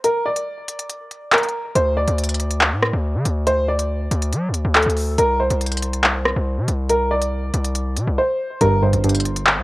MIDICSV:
0, 0, Header, 1, 5, 480
1, 0, Start_track
1, 0, Tempo, 428571
1, 45, Time_signature, 4, 2, 24, 8
1, 10788, End_track
2, 0, Start_track
2, 0, Title_t, "Grand piano"
2, 0, Program_c, 0, 0
2, 46, Note_on_c, 0, 70, 93
2, 268, Note_off_c, 0, 70, 0
2, 285, Note_on_c, 0, 74, 77
2, 1440, Note_off_c, 0, 74, 0
2, 1485, Note_on_c, 0, 70, 80
2, 1936, Note_off_c, 0, 70, 0
2, 1964, Note_on_c, 0, 72, 98
2, 2187, Note_off_c, 0, 72, 0
2, 2203, Note_on_c, 0, 74, 83
2, 3839, Note_off_c, 0, 74, 0
2, 3884, Note_on_c, 0, 72, 104
2, 4107, Note_off_c, 0, 72, 0
2, 4125, Note_on_c, 0, 74, 75
2, 5280, Note_off_c, 0, 74, 0
2, 5324, Note_on_c, 0, 69, 78
2, 5776, Note_off_c, 0, 69, 0
2, 5803, Note_on_c, 0, 70, 112
2, 6027, Note_off_c, 0, 70, 0
2, 6045, Note_on_c, 0, 72, 80
2, 7680, Note_off_c, 0, 72, 0
2, 7724, Note_on_c, 0, 70, 94
2, 7947, Note_off_c, 0, 70, 0
2, 7964, Note_on_c, 0, 74, 78
2, 9119, Note_off_c, 0, 74, 0
2, 9164, Note_on_c, 0, 72, 82
2, 9616, Note_off_c, 0, 72, 0
2, 9644, Note_on_c, 0, 70, 108
2, 9867, Note_off_c, 0, 70, 0
2, 9886, Note_on_c, 0, 72, 72
2, 10788, Note_off_c, 0, 72, 0
2, 10788, End_track
3, 0, Start_track
3, 0, Title_t, "Synth pluck"
3, 0, Program_c, 1, 84
3, 9644, Note_on_c, 1, 43, 95
3, 9868, Note_off_c, 1, 43, 0
3, 9881, Note_on_c, 1, 43, 82
3, 10111, Note_off_c, 1, 43, 0
3, 10125, Note_on_c, 1, 43, 85
3, 10788, Note_off_c, 1, 43, 0
3, 10788, End_track
4, 0, Start_track
4, 0, Title_t, "808-style bass"
4, 0, Program_c, 2, 38
4, 1964, Note_on_c, 2, 38, 114
4, 2310, Note_off_c, 2, 38, 0
4, 2325, Note_on_c, 2, 38, 108
4, 3044, Note_on_c, 2, 45, 100
4, 3061, Note_off_c, 2, 38, 0
4, 3272, Note_off_c, 2, 45, 0
4, 3285, Note_on_c, 2, 38, 102
4, 3525, Note_on_c, 2, 50, 105
4, 3542, Note_off_c, 2, 38, 0
4, 3639, Note_off_c, 2, 50, 0
4, 3644, Note_on_c, 2, 38, 103
4, 4566, Note_off_c, 2, 38, 0
4, 4604, Note_on_c, 2, 38, 109
4, 4845, Note_on_c, 2, 54, 94
4, 4861, Note_off_c, 2, 38, 0
4, 5025, Note_on_c, 2, 38, 97
4, 5042, Note_off_c, 2, 54, 0
4, 5196, Note_off_c, 2, 38, 0
4, 5205, Note_on_c, 2, 38, 100
4, 5435, Note_off_c, 2, 38, 0
4, 5445, Note_on_c, 2, 38, 102
4, 5790, Note_off_c, 2, 38, 0
4, 5804, Note_on_c, 2, 36, 113
4, 6150, Note_off_c, 2, 36, 0
4, 6164, Note_on_c, 2, 36, 104
4, 7086, Note_off_c, 2, 36, 0
4, 7124, Note_on_c, 2, 36, 105
4, 7364, Note_on_c, 2, 48, 100
4, 7381, Note_off_c, 2, 36, 0
4, 7478, Note_off_c, 2, 48, 0
4, 7484, Note_on_c, 2, 36, 105
4, 8406, Note_off_c, 2, 36, 0
4, 8444, Note_on_c, 2, 36, 109
4, 8924, Note_on_c, 2, 48, 98
4, 8941, Note_off_c, 2, 36, 0
4, 9038, Note_off_c, 2, 48, 0
4, 9044, Note_on_c, 2, 36, 100
4, 9159, Note_off_c, 2, 36, 0
4, 9644, Note_on_c, 2, 31, 115
4, 9990, Note_off_c, 2, 31, 0
4, 10004, Note_on_c, 2, 31, 105
4, 10723, Note_on_c, 2, 38, 99
4, 10740, Note_off_c, 2, 31, 0
4, 10788, Note_off_c, 2, 38, 0
4, 10788, End_track
5, 0, Start_track
5, 0, Title_t, "Drums"
5, 44, Note_on_c, 9, 42, 79
5, 156, Note_off_c, 9, 42, 0
5, 404, Note_on_c, 9, 42, 70
5, 516, Note_off_c, 9, 42, 0
5, 765, Note_on_c, 9, 42, 88
5, 877, Note_off_c, 9, 42, 0
5, 886, Note_on_c, 9, 42, 78
5, 998, Note_off_c, 9, 42, 0
5, 1003, Note_on_c, 9, 42, 78
5, 1115, Note_off_c, 9, 42, 0
5, 1244, Note_on_c, 9, 42, 76
5, 1356, Note_off_c, 9, 42, 0
5, 1484, Note_on_c, 9, 39, 108
5, 1484, Note_on_c, 9, 42, 60
5, 1544, Note_off_c, 9, 42, 0
5, 1544, Note_on_c, 9, 42, 54
5, 1596, Note_off_c, 9, 39, 0
5, 1604, Note_off_c, 9, 42, 0
5, 1604, Note_on_c, 9, 42, 44
5, 1664, Note_off_c, 9, 42, 0
5, 1664, Note_on_c, 9, 42, 36
5, 1776, Note_off_c, 9, 42, 0
5, 1964, Note_on_c, 9, 42, 82
5, 2076, Note_off_c, 9, 42, 0
5, 2324, Note_on_c, 9, 42, 71
5, 2436, Note_off_c, 9, 42, 0
5, 2445, Note_on_c, 9, 42, 65
5, 2504, Note_off_c, 9, 42, 0
5, 2504, Note_on_c, 9, 42, 69
5, 2564, Note_off_c, 9, 42, 0
5, 2564, Note_on_c, 9, 42, 66
5, 2624, Note_off_c, 9, 42, 0
5, 2624, Note_on_c, 9, 42, 66
5, 2684, Note_off_c, 9, 42, 0
5, 2684, Note_on_c, 9, 42, 84
5, 2796, Note_off_c, 9, 42, 0
5, 2807, Note_on_c, 9, 42, 79
5, 2919, Note_off_c, 9, 42, 0
5, 2925, Note_on_c, 9, 39, 120
5, 3037, Note_off_c, 9, 39, 0
5, 3164, Note_on_c, 9, 37, 99
5, 3276, Note_off_c, 9, 37, 0
5, 3643, Note_on_c, 9, 42, 83
5, 3755, Note_off_c, 9, 42, 0
5, 3884, Note_on_c, 9, 42, 81
5, 3996, Note_off_c, 9, 42, 0
5, 4245, Note_on_c, 9, 42, 69
5, 4357, Note_off_c, 9, 42, 0
5, 4605, Note_on_c, 9, 42, 85
5, 4717, Note_off_c, 9, 42, 0
5, 4726, Note_on_c, 9, 42, 79
5, 4838, Note_off_c, 9, 42, 0
5, 4844, Note_on_c, 9, 42, 80
5, 4956, Note_off_c, 9, 42, 0
5, 5084, Note_on_c, 9, 42, 76
5, 5196, Note_off_c, 9, 42, 0
5, 5324, Note_on_c, 9, 42, 37
5, 5325, Note_on_c, 9, 39, 104
5, 5404, Note_off_c, 9, 42, 0
5, 5404, Note_on_c, 9, 42, 51
5, 5437, Note_off_c, 9, 39, 0
5, 5485, Note_off_c, 9, 42, 0
5, 5485, Note_on_c, 9, 42, 63
5, 5562, Note_on_c, 9, 46, 60
5, 5597, Note_off_c, 9, 42, 0
5, 5674, Note_off_c, 9, 46, 0
5, 5803, Note_on_c, 9, 42, 83
5, 5915, Note_off_c, 9, 42, 0
5, 6164, Note_on_c, 9, 42, 70
5, 6276, Note_off_c, 9, 42, 0
5, 6283, Note_on_c, 9, 42, 66
5, 6343, Note_off_c, 9, 42, 0
5, 6343, Note_on_c, 9, 42, 69
5, 6403, Note_off_c, 9, 42, 0
5, 6403, Note_on_c, 9, 42, 66
5, 6463, Note_off_c, 9, 42, 0
5, 6463, Note_on_c, 9, 42, 66
5, 6523, Note_off_c, 9, 42, 0
5, 6523, Note_on_c, 9, 42, 90
5, 6635, Note_off_c, 9, 42, 0
5, 6645, Note_on_c, 9, 42, 77
5, 6757, Note_off_c, 9, 42, 0
5, 6763, Note_on_c, 9, 39, 122
5, 6875, Note_off_c, 9, 39, 0
5, 7003, Note_on_c, 9, 37, 94
5, 7115, Note_off_c, 9, 37, 0
5, 7482, Note_on_c, 9, 42, 84
5, 7594, Note_off_c, 9, 42, 0
5, 7723, Note_on_c, 9, 42, 81
5, 7835, Note_off_c, 9, 42, 0
5, 8083, Note_on_c, 9, 42, 73
5, 8195, Note_off_c, 9, 42, 0
5, 8443, Note_on_c, 9, 42, 84
5, 8555, Note_off_c, 9, 42, 0
5, 8565, Note_on_c, 9, 42, 79
5, 8677, Note_off_c, 9, 42, 0
5, 8683, Note_on_c, 9, 42, 80
5, 8795, Note_off_c, 9, 42, 0
5, 8924, Note_on_c, 9, 42, 77
5, 9036, Note_off_c, 9, 42, 0
5, 9643, Note_on_c, 9, 42, 82
5, 9755, Note_off_c, 9, 42, 0
5, 10004, Note_on_c, 9, 42, 69
5, 10116, Note_off_c, 9, 42, 0
5, 10124, Note_on_c, 9, 42, 65
5, 10185, Note_off_c, 9, 42, 0
5, 10185, Note_on_c, 9, 42, 69
5, 10245, Note_off_c, 9, 42, 0
5, 10245, Note_on_c, 9, 42, 68
5, 10304, Note_off_c, 9, 42, 0
5, 10304, Note_on_c, 9, 42, 68
5, 10365, Note_off_c, 9, 42, 0
5, 10365, Note_on_c, 9, 42, 85
5, 10477, Note_off_c, 9, 42, 0
5, 10486, Note_on_c, 9, 42, 78
5, 10598, Note_off_c, 9, 42, 0
5, 10604, Note_on_c, 9, 39, 118
5, 10716, Note_off_c, 9, 39, 0
5, 10788, End_track
0, 0, End_of_file